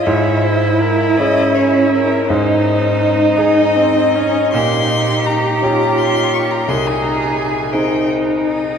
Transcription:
<<
  \new Staff \with { instrumentName = "Violin" } { \time 6/8 \key aes \major \tempo 4. = 55 des''8 c''8 bes'8 ees''8 des''8 bes'8 | c''4. ees''4. | c'''4 bes''4 c'''8 des'''16 bes''16 | c'''16 aes''16 bes''8 aes''8 g''8 r8 ees''8 | }
  \new Staff \with { instrumentName = "Cello" } { \time 6/8 \key aes \major fes'4. des'4. | ees'2. | g'2. | aes'4. ees'4. | }
  \new Staff \with { instrumentName = "Grand piano" } { \time 6/8 \key aes \major aes,4. <des' fes' aes'>4. | aes,4. <ees' aes'>4. | bes,4. <des' ees' g'>4. | c,4. <c' ees' aes'>4. | }
  \new Staff \with { instrumentName = "Viola" } { \time 6/8 \key aes \major fes'2. | ees'4. ees'8 c'8 des'8 | ees'4. f'4. | ees'4. ees'4. | }
>>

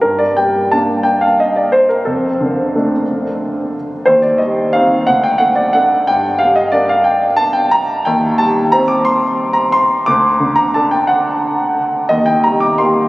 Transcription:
<<
  \new Staff \with { instrumentName = "Grand piano" } { \time 3/4 \key g \minor \tempo 4 = 179 bes'8 d''8 g''4 a''4 | g''8 f''8 ees''8 d''8 c''8 bes'8 | a'2.~ | a'2~ a'8 r8 |
c''8 d''8 ees''4 f''4 | fis''8 g''8 fis''8 d''8 fis''4 | g''4 f''8 ees''8 d''8 f''8 | g''4 a''8 g''8 bes''4 |
g''4 a''4 bes''8 d'''8 | c'''4. bes''8 c'''4 | d'''4. bes''8 a''8 g''8 | fis''2~ fis''8 r8 |
ees''8 g''8 bes''8 d'''8 c'''4 | }
  \new Staff \with { instrumentName = "Grand piano" } { \time 3/4 \key g \minor g,4 g4 <bes d'>4~ | <bes d'>2. | f,4 d4 <a d'>4~ | <a d'>2. |
ees,4 g4 <c' ees'>4 | d,4 a4 <d' a'>4 | g,4 g4 <d' bes'>4~ | <d' bes'>2. |
ees,4 g4 <c' c''>4~ | <c' c''>2. | d,4 d4 <d' a'>4~ | <d' a'>2. |
ees,4 g4 <bes g'>4 | }
>>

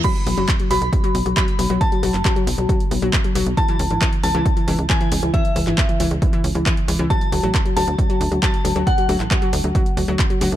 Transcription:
<<
  \new Staff \with { instrumentName = "Synth bell" } { \time 4/4 \key a \major \tempo 4 = 136 b''4. b''4. b''4 | a''1 | a''4. a''4. gis''4 | e''1 |
a''4. a''4. a''4 | fis''1 | }
  \new Staff \with { instrumentName = "Synth pluck" } { \clef bass \time 4/4 \key a \major fis16 r16 fis16 fis16 r16 fis16 fis16 r16 fis16 fis16 r16 fis16 fis16 r16 fis16 fis16 | r16 fis16 fis16 r16 fis16 fis16 r16 fis16 fis16 r16 fis16 fis16 r16 fis16 fis16 r16 | e16 e16 r16 e16 e16 r16 e16 e16 r16 e16 e16 r16 e16 e16 r16 e16 | e16 r16 e16 e16 r16 e16 e16 r16 e16 e16 r16 e16 e16 r16 e16 e16 |
fis16 r16 fis16 fis16 r16 fis16 fis16 r16 fis16 fis16 r16 fis16 fis16 r16 fis16 fis16 | r16 fis16 fis16 r16 fis16 fis16 r16 fis16 fis16 r16 fis16 fis16 r16 fis16 fis16 r16 | }
  \new Staff \with { instrumentName = "Analog synth bass" } { \clef bass \time 4/4 \key a \major r8 b,,16 fis,,16 r8 b,,16 b,,16 r8 b,,16 b,,16 r8 b,,16 b,,16 | r8 b,,16 fis,,16 r8 b,,16 b,,16 r8 b,,16 b,,16 r8 b,,16 b,,16 | r8 cis,16 gis,,16 r8 cis,16 cis,16 r8 cis,16 cis,16 r8 cis,16 cis,16 | r8 cis,16 gis,,16 r8 cis,16 cis,16 r8 cis,16 cis,16 r8 cis,16 cis,16 |
r8 d,16 a,,16 r8 d,16 d,16 r8 d,16 d,16 r8 d,16 d,16 | r8 d,16 a,,16 r8 d,16 d,16 r8 d,16 d,16 r8 d,16 d,16 | }
  \new DrumStaff \with { instrumentName = "Drums" } \drummode { \time 4/4 <cymc hh bd>16 hh16 hho16 hh16 <hc hh bd>16 hh16 hho16 hh16 <hh bd>16 hh16 hho16 hh16 <hc hh bd>16 hh16 hho8 | <hh bd>16 hh16 hho16 <hc hh>16 <hc hh bd>16 hh16 hho16 hh16 <hh bd>16 hh16 hho16 hh16 <hc hh bd>16 hh16 hho16 hh16 | <hh bd>16 hh16 hho16 hh16 <hc hh bd>16 hh16 hho16 hh16 <hh bd>16 hh16 hho16 hh16 <hc hh bd>16 hh16 hho8 | <hh bd>16 hh16 hho16 <hc hh>16 <hc hh bd>16 hh16 hho16 hh16 <hh bd>16 hh16 hho16 hh16 <hc hh bd>16 hh16 hho8 |
<hh bd>16 hh16 hho16 hh16 <hc hh bd>16 hh16 hho16 hh16 <hh bd>16 hh16 hho16 hh16 <hc hh bd>16 hh16 hho16 hh16 | <hh bd>16 hh16 hho16 <hc hh>16 <hc hh bd>16 hh16 hho16 hh16 <hh bd>16 hh16 hho16 hh16 <hc hh bd>16 hh16 hho8 | }
>>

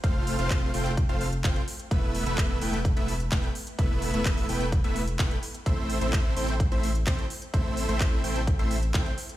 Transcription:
<<
  \new Staff \with { instrumentName = "Supersaw synth" } { \time 4/4 \key a \minor \tempo 4 = 128 <a c' f' c'' f''>8. <a c' f' c'' f''>8. <a c' f' c'' g''>16 r8 <a c' f' c'' f''>16 r8 <a c' f' c'' g''>16 r8. | <a b e' b' e''>8. <a b e' b' e''>8. <a b e' b' g''>16 r8 <a b e' b' e''>16 r8 <a b e' b' g''>16 r8. | <a b e' b' e''>8. <a b e' b' e''>8. <a b e' b' g''>16 r8 <a b e' b' e''>16 r8 <a b e' b' g''>16 r8. | <a c' e' c'' e''>8. <a c' e' c'' e''>8. <a c' e' c'' g''>16 r8 <a c' e' c'' e''>16 r8 <a c' e' c'' g''>16 r8. |
<a c' e' c'' e''>8. <a c' e' c'' e''>8. <a c' e' c'' g''>16 r8 <a c' e' c'' e''>16 r8 <a c' e' c'' g''>16 r8. | }
  \new Staff \with { instrumentName = "Sub bass" } { \clef bass \time 4/4 \key a \minor f,,8. f,,8. f,,8. f,,8. f,,16 r8. | e,,8. e,,8. e,,8. e,,8. e,,16 r8. | e,,8. e,,8. e,,8. e,,8. e,,16 r8. | a,,8. a,,8. a,,8. a,,8. a,,16 r8. |
a,,8. a,,8. a,,8. a,,8. a,,16 r8. | }
  \new DrumStaff \with { instrumentName = "Drums" } \drummode { \time 4/4 <hh bd>8 hho16 hh16 <hc hh bd>8 hho16 hh16 <hh bd>16 hh16 hho16 hh16 <hc hh bd>16 hh16 hho16 hh16 | <hh bd>8 hho16 hh16 <hc hh bd>8 hho16 hh16 <hh bd>16 hh16 hho16 hh16 <hc hh bd>16 hh16 hho16 hh16 | <hh bd>8 hho16 hh16 <hc hh bd>16 hho16 hho16 hh16 <hh bd>16 hh16 hho16 hh16 <hc hh bd>16 hh16 hho16 hh16 | <hh bd>8 hho16 hh16 <hc hh bd>8 hho16 hh16 <hh bd>16 hh16 hho16 hh16 <hc hh bd>16 hh16 hho16 hh16 |
<hh bd>8 hho16 hh16 <hc hh bd>8 hho16 hh16 <hh bd>16 hh16 hho16 hh16 <hc hh bd>16 hh16 hho16 hh16 | }
>>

